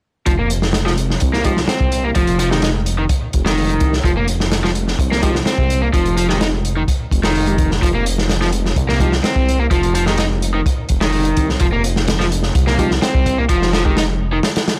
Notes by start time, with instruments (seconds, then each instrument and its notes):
0.26 detuned saw bass F1, overdriven electric guitar F3, kick, closed hi-hat
0.39 overdriven electric guitar A#3
0.50 closed hi-hat
0.62 snare
0.73 snare, closed hi-hat
0.86 overdriven electric guitar F3, snare
0.97 closed hi-hat
1.10 snare
1.20 detuned saw bass C2, kick, closed hi-hat
1.33 overdriven electric guitar A#3, snare
1.44 overdriven electric guitar F3, tine electric piano G#3 D#4 G4, kick, closed hi-hat
1.57 snare
1.68 overdriven electric guitar C4, snare, closed hi-hat
1.81 detuned saw bass C2, kick
1.92 closed hi-hat
2.04 overdriven electric guitar A#3
2.15 detuned saw bass F1, overdriven electric guitar F3, kick, closed hi-hat
2.27 closed hi-hat
2.39 overdriven electric guitar F3, closed hi-hat
2.51 overdriven electric guitar D#3, tine electric piano G#3 D#4 G4, snare
2.62 overdriven electric guitar D#4, snare, closed hi-hat
2.86 closed hi-hat
2.98 overdriven electric guitar D#3
3.09 kick, closed hi-hat
3.33 detuned saw bass F1, kick, closed hi-hat
3.46 overdriven electric guitar D#3, snare
3.57 open hi-hat
3.70 closed hi-hat
3.80 detuned saw bass C2, kick, closed hi-hat
3.93 snare
4.04 detuned saw bass F1, overdriven electric guitar F3, kick, closed hi-hat
4.17 overdriven electric guitar A#3
4.28 closed hi-hat
4.40 snare
4.52 snare, closed hi-hat
4.64 overdriven electric guitar F3, snare
4.75 closed hi-hat
4.88 snare
4.99 detuned saw bass C2, kick, closed hi-hat
5.11 overdriven electric guitar A#3, snare
5.23 overdriven electric guitar F3, tine electric piano G#3 D#4 G4, kick, closed hi-hat
5.35 snare
5.46 overdriven electric guitar C4, snare, closed hi-hat
5.58 detuned saw bass C2, kick
5.70 closed hi-hat
5.82 overdriven electric guitar A#3
5.94 detuned saw bass F1, overdriven electric guitar F3, kick, closed hi-hat
6.06 closed hi-hat
6.17 overdriven electric guitar F3, closed hi-hat
6.29 overdriven electric guitar D#3, tine electric piano G#3 D#4 G4, snare
6.41 overdriven electric guitar D#4, snare, closed hi-hat
6.65 closed hi-hat
6.77 overdriven electric guitar D#3
6.88 kick, closed hi-hat
7.11 detuned saw bass F1, kick, closed hi-hat
7.23 detuned saw bass F1, overdriven electric guitar D#3, snare
7.35 open hi-hat
7.47 tine electric piano G#3 D#4 G4, closed hi-hat
7.58 kick, closed hi-hat
7.71 snare
7.82 detuned saw bass F1, overdriven electric guitar F3, kick, closed hi-hat
7.95 overdriven electric guitar A#3
8.06 closed hi-hat
8.18 snare
8.29 snare, closed hi-hat
8.41 overdriven electric guitar F3, snare
8.52 closed hi-hat
8.66 snare
8.76 detuned saw bass C2, kick, closed hi-hat
8.89 overdriven electric guitar A#3, snare
9.00 overdriven electric guitar F3, tine electric piano G#3 D#4 G4, kick, closed hi-hat
9.12 snare
9.24 overdriven electric guitar C4, snare, closed hi-hat
9.36 detuned saw bass C2, kick
9.49 closed hi-hat
9.59 overdriven electric guitar A#3
9.71 detuned saw bass F1, overdriven electric guitar F3, kick, closed hi-hat
9.83 closed hi-hat
9.95 overdriven electric guitar F3, closed hi-hat
10.06 overdriven electric guitar D#3, tine electric piano G#3 D#4 G4, snare
10.18 overdriven electric guitar D#4, snare, closed hi-hat
10.42 closed hi-hat
10.54 overdriven electric guitar D#3
10.66 kick, closed hi-hat
10.89 detuned saw bass F1, kick, closed hi-hat
11.01 overdriven electric guitar D#3, snare
11.12 open hi-hat
11.25 closed hi-hat
11.37 detuned saw bass C2, kick, closed hi-hat
11.49 snare
11.60 detuned saw bass F1, overdriven electric guitar F3, kick, closed hi-hat
11.72 overdriven electric guitar A#3
11.84 closed hi-hat
11.96 snare
12.08 snare, closed hi-hat
12.20 overdriven electric guitar F3, snare
12.32 closed hi-hat
12.43 snare
12.55 detuned saw bass C2, kick, closed hi-hat
12.67 overdriven electric guitar A#3, snare
12.79 overdriven electric guitar F3, tine electric piano G#3 D#4 G4, kick, closed hi-hat
12.91 snare
13.02 overdriven electric guitar C4, snare, closed hi-hat
13.15 detuned saw bass C2, kick
13.26 kick, closed hi-hat
13.38 overdriven electric guitar A#3
13.49 detuned saw bass F1, overdriven electric guitar F3, kick, closed hi-hat
13.62 snare
13.73 overdriven electric guitar F3, snare, closed hi-hat
13.85 overdriven electric guitar D#3, tine electric piano G#3 D#4 G4, kick
13.97 overdriven electric guitar D#4, snare, closed hi-hat
14.33 overdriven electric guitar D#3
14.43 snare, closed hi-hat
14.56 snare, closed hi-hat
14.68 snare, closed hi-hat